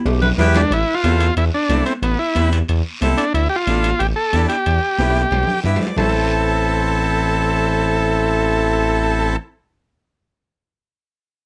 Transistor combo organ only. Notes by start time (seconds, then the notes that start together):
0.57 D4
0.73 E4
0.94 F4
1.38 E4
1.54 D4
1.86 C4
2.04 B3
2.19 E4
3.17 D4
3.34 E4
3.49 G4
3.56 F4
3.99 G4
4.16 A4
4.49 G4
5.98 A4